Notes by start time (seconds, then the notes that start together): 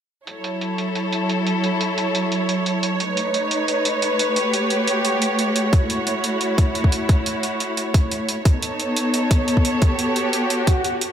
0.27 F#3 E4 A4 C#5, closed hi-hat
0.44 closed hi-hat
0.61 closed hi-hat
0.78 closed hi-hat
0.95 closed hi-hat
1.12 closed hi-hat
1.29 closed hi-hat
1.47 closed hi-hat
1.64 closed hi-hat
1.81 closed hi-hat
1.98 closed hi-hat
2.15 closed hi-hat
2.32 closed hi-hat
2.49 closed hi-hat
2.66 closed hi-hat
2.83 closed hi-hat
3.00 A3 D#4 B4, closed hi-hat
3.17 closed hi-hat
3.34 closed hi-hat
3.51 closed hi-hat
3.68 closed hi-hat
3.85 closed hi-hat
4.02 closed hi-hat
4.19 closed hi-hat
4.36 F#4 G4, closed hi-hat
4.54 closed hi-hat
4.70 closed hi-hat
4.88 closed hi-hat
5.05 closed hi-hat
5.22 closed hi-hat
5.39 closed hi-hat
5.56 closed hi-hat
5.73 E4, kick, closed hi-hat
5.90 closed hi-hat
6.07 closed hi-hat
6.24 closed hi-hat
6.41 closed hi-hat
6.58 kick, closed hi-hat
6.75 closed hi-hat
6.84 kick
6.92 closed hi-hat
7.09 kick, closed hi-hat
7.26 closed hi-hat
7.43 closed hi-hat
7.60 closed hi-hat
7.77 closed hi-hat
7.94 kick, closed hi-hat
8.11 closed hi-hat
8.29 closed hi-hat
8.45 B3 D#4 A4 C#5, kick, closed hi-hat
8.62 closed hi-hat
8.80 closed hi-hat
8.96 closed hi-hat
9.14 closed hi-hat
9.31 kick, closed hi-hat
9.48 closed hi-hat
9.57 kick
9.65 closed hi-hat
9.82 F#4 G4, kick, closed hi-hat
9.99 closed hi-hat
10.16 closed hi-hat
10.33 closed hi-hat
10.50 closed hi-hat, swell
10.67 kick, closed hi-hat
10.84 closed hi-hat
11.01 closed hi-hat